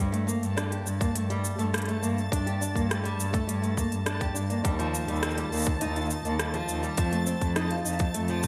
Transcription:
0.00 0.38 G2 loud
0.00 0.12 G3 medium
0.00 8.47 A5 medium
0.00 8.47 A6 medium
0.00 shaker soft
0.12 0.26 A3 medium
0.12 closed hi-hat soft
0.12 shaker soft
0.27 0.41 A#3 medium
0.27 shaker medium
0.43 0.81 G2 medium
0.43 closed hi-hat soft
0.43 shaker soft
0.57 0.70 D4 medium
0.57 cross-stick medium
0.57 closed hi-hat medium
0.57 shaker soft
0.71 0.84 G4 medium
0.71 closed hi-hat soft
0.71 shaker soft
0.85 1.09 G2 medium
0.85 0.99 D4 medium
0.85 shaker medium
1.00 1.14 A#3 medium
1.00 kick medium
1.00 closed hi-hat soft
1.00 shaker soft
1.15 1.54 G2 medium
1.15 1.28 A3 medium
1.15 closed hi-hat medium
1.15 shaker soft
1.30 1.58 G3 medium
1.30 closed hi-hat soft
1.30 shaker soft
1.45 shaker medium
1.59 1.98 G2 medium
1.59 1.72 A3 medium
1.59 closed hi-hat soft
1.59 shaker soft
1.73 1.87 G3 medium
1.73 cross-stick loud
1.73 closed hi-hat medium
1.73 shaker soft
1.78 closed hi-hat medium
1.82 closed hi-hat soft
1.85 2.01 A3 medium
1.85 closed hi-hat soft
1.89 closed hi-hat soft
1.89 shaker soft
2.02 2.26 G2 medium
2.02 2.16 A#3 medium
2.02 shaker medium
2.18 shaker soft
2.32 2.71 G2 medium
2.32 2.45 D4 loud
2.32 kick loud
2.32 closed hi-hat medium
2.32 shaker soft
2.46 2.59 G4 medium
2.46 closed hi-hat soft
2.46 shaker soft
2.61 2.74 D4 medium
2.61 shaker medium
2.75 3.15 G2 medium
2.75 2.88 A#3 medium
2.75 kick medium
2.75 closed hi-hat soft
2.75 shaker soft
2.90 3.03 A3 medium
2.90 cross-stick medium
2.90 closed hi-hat medium
2.90 shaker soft
3.04 3.32 G3 medium
3.04 closed hi-hat soft
3.04 shaker soft
3.19 3.42 G2 medium
3.19 shaker medium
3.33 3.46 A3 medium
3.33 kick loud
3.33 closed hi-hat soft
3.33 shaker soft
3.47 3.87 G2 medium
3.47 3.61 G3 medium
3.47 closed hi-hat medium
3.47 shaker soft
3.62 3.76 A3 medium
3.62 closed hi-hat soft
3.62 shaker soft
3.77 3.91 A#3 medium
3.77 kick medium
3.77 shaker medium
3.92 4.31 G2 medium
3.92 closed hi-hat soft
3.92 shaker soft
4.06 4.19 D4 medium
4.06 cross-stick loud
4.06 closed hi-hat medium
4.06 shaker soft
4.20 4.34 G4 medium
4.20 kick medium
4.20 closed hi-hat soft
4.20 shaker soft
4.34 4.58 G2 medium
4.34 4.48 D4 medium
4.34 shaker medium
4.50 4.63 A#3 medium
4.50 closed hi-hat soft
4.50 shaker soft
4.64 5.04 D#2 loud
4.64 4.77 G3 medium
4.64 kick loud
4.64 closed hi-hat medium
4.64 shaker soft
4.79 5.07 F3 medium
4.79 closed hi-hat soft
4.79 shaker soft
4.94 shaker medium
5.08 5.48 D#2 loud
5.08 5.21 G3 medium
5.08 closed hi-hat soft
5.08 shaker soft
5.16 shaker soft
5.23 5.36 F3 medium
5.23 cross-stick loud
5.23 closed hi-hat medium
5.23 shaker soft
5.30 shaker soft
5.37 5.51 G3 medium
5.37 closed hi-hat soft
5.37 shaker soft
5.52 5.75 D#2 medium
5.52 5.66 A#3 medium
5.52 shaker soft
5.55 shaker soft
5.57 shaker soft
5.59 shaker medium
5.62 shaker medium
5.64 closed hi-hat soft
5.64 shaker medium
5.67 kick loud
5.67 shaker soft
5.81 6.21 D#2 medium
5.81 5.94 D#4 medium
5.81 closed hi-hat medium
5.81 shaker soft
5.95 6.09 F4 medium
5.95 closed hi-hat soft
5.95 shaker soft
6.01 shaker soft
6.06 shaker soft
6.10 6.24 D#4 medium
6.10 shaker medium
6.20 shaker soft
6.25 6.64 D#2 medium
6.25 6.38 A#3 medium
6.25 closed hi-hat soft
6.25 shaker soft
6.39 6.53 G3 medium
6.39 cross-stick medium
6.39 closed hi-hat medium
6.39 shaker soft
6.54 6.82 F3 medium
6.54 closed hi-hat soft
6.54 shaker soft
6.69 6.92 D#2 medium
6.69 shaker medium
6.83 6.96 G3 medium
6.83 shaker soft
6.97 7.37 F2 medium
6.97 7.11 F3 medium
6.97 kick loud
6.97 closed hi-hat medium
6.97 shaker soft
7.12 7.25 A3 medium
7.12 closed hi-hat soft
7.12 shaker soft
7.27 7.41 C4 medium
7.27 shaker medium
7.41 7.81 F2 loud
7.41 kick medium
7.41 closed hi-hat soft
7.41 shaker soft
7.56 7.69 D#4 medium
7.56 cross-stick medium
7.56 closed hi-hat medium
7.56 shaker soft
7.71 7.84 F4 medium
7.71 closed hi-hat soft
7.71 shaker soft
7.78 shaker soft
7.85 8.09 F2 medium
7.85 7.98 D#4 medium
7.85 shaker medium
7.93 shaker soft
7.99 8.13 C4 medium
7.99 kick loud
7.99 closed hi-hat soft
7.99 shaker soft
8.14 8.47 F2 medium
8.14 8.27 A3 medium
8.14 closed hi-hat medium
8.14 shaker soft
8.28 8.42 F3 medium
8.28 closed hi-hat soft
8.28 shaker soft
8.43 kick medium
8.43 shaker medium

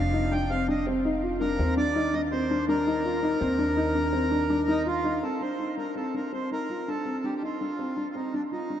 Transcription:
0.00 1.56 F1 medium
0.00 0.11 D4 medium
0.00 0.33 F5 medium
0.13 0.29 D#4 medium
0.31 0.47 D4 medium
0.31 0.51 G5 medium
0.50 0.66 C4 medium
0.50 0.67 F5 medium
0.68 0.84 D4 medium
0.68 0.86 D#5 medium
0.87 1.02 C4 medium
1.05 1.20 D#4 medium
1.23 1.38 F4 medium
1.40 1.56 D4 medium
1.40 1.74 A#4 medium
1.59 3.37 D#2 medium
1.59 1.75 C4 medium
1.77 1.93 D4 medium
1.77 2.15 D5 loud
1.95 2.11 D#4 medium
2.13 2.29 D4 medium
2.13 2.22 D#5 medium
2.32 2.47 C4 medium
2.32 2.65 C5 medium
2.51 2.66 D4 medium
2.68 2.84 D4 medium
2.68 4.83 A#4 medium
2.87 3.02 D#4 medium
3.05 3.20 F4 medium
3.23 3.38 D#4 medium
3.40 5.19 D#2 medium
3.40 3.56 C4 medium
3.58 3.74 D4 medium
3.77 3.92 D#4 medium
3.95 4.11 D4 medium
4.13 4.29 C4 medium
4.31 4.47 D4 medium
4.50 4.65 D4 medium
4.68 4.83 D#4 medium
4.68 4.87 D#4 medium
4.86 5.01 F4 medium
4.86 5.24 F4 medium
5.04 5.20 D#4 medium
5.22 5.38 C4 medium
5.22 5.42 A4 medium
5.41 5.56 D4 soft
5.41 5.75 C5 medium
5.59 5.75 D#4 soft
5.77 5.93 D4 soft
5.77 5.95 A#4 medium
5.96 6.11 C4 medium
5.96 6.15 A4 medium
6.14 6.30 D4 medium
6.14 6.32 A#4 medium
6.32 6.48 C4 medium
6.32 6.50 C5 medium
6.51 6.67 D#4 medium
6.51 6.89 A#4 medium
6.70 6.85 F4 soft
6.88 7.03 D4 medium
6.88 7.26 A4 medium
7.05 7.21 C4 medium
7.24 7.40 D4 soft
7.24 7.34 G4 medium
7.36 7.43 G4 soft
7.42 7.58 D#4 medium
7.42 8.08 F4 medium
7.61 7.76 D4 soft
7.79 7.95 C4 medium
7.97 8.13 D4 medium
8.11 8.15 F4 soft
8.15 8.31 C4 medium
8.15 8.34 D#4 medium
8.34 8.49 D4 medium
8.34 8.42 D4 medium
8.52 8.80 D#4 medium
8.52 8.67 F4 medium
8.70 8.80 D4 medium

